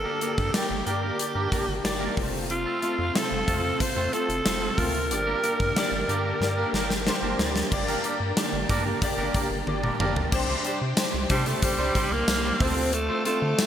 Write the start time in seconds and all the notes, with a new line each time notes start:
Already playing: G2 D3 A#3 D4 G4 A4 D5
0.05 A#3 D4 G4 A#4
0.21 A#3 D4 G4 A#4 D5, closed hi-hat
0.38 G2, muted clean electric guitar stroke, kick
0.53 A#3 D4 G4 D5, muted clean electric guitar stroke, snare, closed hi-hat
0.70 G1, muted clean electric guitar stroke
0.86 G2 A#3 D4 G4 A#4 D5, closed hi-hat
1.03 A#3 D4 G4 A#4
1.19 A#3 D4 G4 D5, muted clean electric guitar stroke, closed hi-hat
1.35 G2 A#3 D4 G4 A#4
1.51 A#3 D4 G4 A#4 D5, kick, closed hi-hat
1.68 G1, muted clean electric guitar stroke
1.84 G1 A#3 D4 G4 D5, muted clean electric guitar stroke, snare, closed hi-hat
2.00 A#3 D4 G4 A#4
2.17 F1 C3 A3 C4 F4 C5, kick, open hi-hat
2.34 muted clean electric guitar stroke
2.50 F4, muted clean electric guitar stroke, closed hi-hat
2.66 A3 C4 F4 A4
2.82 A3 C4 F4 A4 C5, closed hi-hat
2.98 F2, muted clean electric guitar stroke
3.14 A3 C4 F4 A4 C5, muted clean electric guitar stroke, snare, closed hi-hat
3.31 F1, muted clean electric guitar stroke
3.47 F2 A3 C4 F4 A4 C5, kick, closed hi-hat
3.63 A3 C4 F4 A4
3.80 A3 C4 F4 C5, muted clean electric guitar stroke, kick, closed hi-hat
3.96 F2 A3 C4 F4 A4
4.12 A3 C4 F4 A4 C5, closed hi-hat
4.29 F1, muted clean electric guitar stroke, closed hi-hat
4.45 F1 A3 C4 F4 C5, muted clean electric guitar stroke, snare, closed hi-hat
4.62 A3 C4 F4 A4
4.78 D2 A3 C4 F4 A4 A#4 C5, kick, open hi-hat
4.94 muted clean electric guitar stroke, closed hi-hat
5.10 G1 G2 D3 A#3 D4 G4 D5, muted clean electric guitar stroke, closed hi-hat
5.27 A#3 D4 G4 A#4
5.43 A#3 D4 G4 A#4 D5, closed hi-hat
5.60 G2, muted clean electric guitar stroke, kick
5.75 A#3 D4 G4 D5, muted clean electric guitar stroke, snare, closed hi-hat
5.92 G1, muted clean electric guitar stroke
6.08 G2 A#3 D4 G4 A#4 D5, closed hi-hat
6.25 A#3 D4 G4 A#4
6.40 G2 A#3 D4 G4 D5, muted clean electric guitar stroke, snare
6.57 A#3 D4 G4 A#4
6.73 G1 A#3 D4 G4 A#4 D5, snare
6.90 muted clean electric guitar stroke, snare
7.06 A#3 D4 G4 C5, muted clean electric guitar stroke, snare
7.22 G1 A#3 D4 G4 A#4
7.39 D2 A#3 D4 G4 D5, muted clean electric guitar stroke, snare
7.56 muted clean electric guitar stroke, snare
7.71 G1 G2 D3 A#3 D4 G4 D5, muted clean electric guitar stroke, kick, crash
7.88 A#3 D4 G4 A#4, closed hi-hat
8.04 A#3 D4 G4 A#4 D5, closed hi-hat
8.20 G2, muted clean electric guitar stroke
8.36 A#3 D4 G4 D5, muted clean electric guitar stroke, snare, closed hi-hat
8.53 G1, muted clean electric guitar stroke
8.69 G2 A#3 D4 G4 A#4 D5, kick, closed hi-hat
8.86 A#3 D4 G4
9.02 A#3 D4 G4 D5, kick, closed hi-hat
9.18 G1 A#3 D4 G4 A#4
9.34 A#3 D4 G4 A#4 D5, kick, closed hi-hat
9.51 G1
9.67 G1 A#3 D4 G4 D5, muted clean electric guitar stroke, high tom
9.83 A#3 D4 G4 A#4, mid tom
10.00 G1 A#3 D4 G4 A#4 D5, mid tom
10.16 muted clean electric guitar stroke, floor tom
10.32 C2 C3 D4 G4 C5 D5 C6, muted clean electric guitar stroke, kick, crash
10.49 G3 D4 G4 C5
10.64 G3 D4 G4 C5, closed hi-hat
10.81 C3, muted clean electric guitar stroke
10.97 D4 G4 C5, muted clean electric guitar stroke, snare, closed hi-hat, tambourine
11.13 C2, muted clean electric guitar stroke
11.29 C3 G3 D4 G4 C5, kick, closed hi-hat
11.46 G3 A3 D4 G4 A4 C5, closed hi-hat
11.62 G3 D4 G4 C5, muted clean electric guitar stroke, kick, closed hi-hat
11.79 C2 G3 D4 G4 C5
11.95 G3 D4 G4 C5, kick, closed hi-hat
12.11 C2 A#3 A#4, muted clean electric guitar stroke
12.27 C2 D4 G4 C5, muted clean electric guitar stroke, snare, closed hi-hat, tambourine
12.44 G3 D4 G4 C5
12.60 D2 D3 A3 C4 D4 F4 A4 C5 F5 D6, kick, open hi-hat
12.76 muted clean electric guitar stroke
12.93 A3 A4, muted clean electric guitar stroke, closed hi-hat
13.09 C4 F4 A4 C5
13.25 A3 C4 D4 F4 A4 C5, closed hi-hat
13.41 D3, muted clean electric guitar stroke
13.57 A3 C4 D4 F4 C5, muted clean electric guitar stroke, snare, closed hi-hat, tambourine